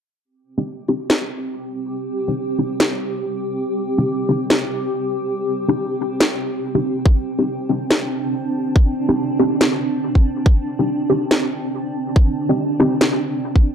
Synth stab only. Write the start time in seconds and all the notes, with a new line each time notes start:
0.58 C4 D4 D#4 G4
0.88 C4 D4 D#4 G4
2.28 C4 D4 D#4 G4
2.59 C4 D4 D#4 G4
3.98 C4 D4 D#4 G4
4.29 C4 D4 D#4 G4
5.68 C4 D4 D#4 G4
6.75 C4 D4 D#4 G4
7.39 C4 D4 D#4 G4
7.69 C4 D4 D#4 G4
9.09 C4 D4 D#4 G4
9.39 C4 D4 D#4 G4
10.79 C4 D4 D#4 G4
11.10 C4 D4 D#4 G4
12.49 C4 D4 D#4 G4
12.80 C4 D4 D#4 G4